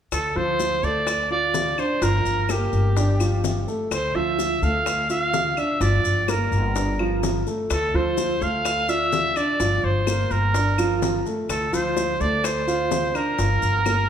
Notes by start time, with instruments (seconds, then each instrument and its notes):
0.12 upright bass D2, trumpet A4, high bongo, claves, maracas
0.36 upright bass D2, grand piano F3 F4, trumpet C5
0.60 high bongo, maracas
0.83 upright bass D2, grand piano A3 A4, trumpet D5, high bongo, maracas
1.07 high bongo, claves, maracas
1.30 grand piano F4 F5, trumpet D5, high bongo
1.54 high bongo, low bongo, maracas
1.78 grand piano D4 D5, trumpet C5, high bongo, claves, maracas
2.02 upright bass G1, grand piano F3 F4, trumpet A#4, high bongo, maracas
2.25 upright bass G1, maracas
2.49 grand piano A#3 A#4, trumpet G4, high bongo, claves, maracas
2.73 upright bass G1, high bongo, maracas
2.96 grand piano D4 D5, high bongo, maracas
3.20 grand piano F3 F4, high bongo, claves, maracas
3.44 high bongo, low bongo, maracas
3.67 grand piano A3 A4, high bongo, maracas
3.91 upright bass D2, trumpet C5, high bongo, claves, maracas
4.15 upright bass D2, grand piano F3 F4, trumpet E5
4.39 high bongo, maracas
4.62 upright bass D2, grand piano A3 A4, trumpet F5, high bongo, maracas
4.86 high bongo, claves, maracas
5.09 grand piano F4 F5, trumpet F5, high bongo, maracas
5.33 high bongo, low bongo, maracas
5.57 grand piano D4 D5, trumpet E5, high bongo, claves, maracas
5.80 upright bass G1, grand piano F3 F4, trumpet D5, high bongo, maracas
6.04 upright bass G1, maracas
6.28 grand piano A#3 A#4, trumpet A#4, high bongo, claves, maracas
6.52 upright bass G1, high bongo, maracas
6.76 grand piano D4 D5, high bongo, maracas
6.99 grand piano F3 F4, high bongo, claves
7.23 high bongo, low bongo, maracas
7.47 grand piano A3 A4, high bongo, maracas
7.70 upright bass D2, trumpet A4, high bongo, claves, maracas
7.94 upright bass D2, grand piano F3 F4, trumpet C5
8.18 high bongo, maracas
8.41 upright bass D2, grand piano A3 A4, trumpet F5, high bongo, maracas
8.65 high bongo, claves, maracas
8.89 grand piano F4 D5, trumpet E5, high bongo, maracas
9.13 high bongo, low bongo, maracas
9.36 grand piano D4 D5, trumpet D5, high bongo, claves, maracas
9.60 upright bass G1, grand piano F3 F4, high bongo, maracas
9.84 upright bass G1, trumpet C5
10.07 grand piano A#3 A#4, high bongo, claves, maracas
10.31 upright bass G1, trumpet A#4, high bongo, maracas
10.54 grand piano D4 D5, high bongo, maracas
10.78 grand piano F3 F4, high bongo, claves, maracas
11.02 high bongo, low bongo, maracas
11.26 grand piano A3 A4, high bongo, maracas
11.49 upright bass D2, trumpet A4, high bongo, claves, maracas
11.73 upright bass D2, grand piano F3 F4, trumpet C5, maracas
11.97 high bongo, maracas
12.20 upright bass D2, grand piano A3 A4, trumpet D5, high bongo, maracas
12.44 trumpet C5, high bongo, claves, maracas
12.67 grand piano F4 F5, high bongo, maracas
12.91 high bongo, low bongo, maracas
13.15 grand piano D4 D5, trumpet A#4, high bongo, claves, maracas
13.38 upright bass G1, grand piano F3 F4, high bongo, maracas
13.62 upright bass G1, maracas
13.86 grand piano A#3 A#4, high bongo, claves, maracas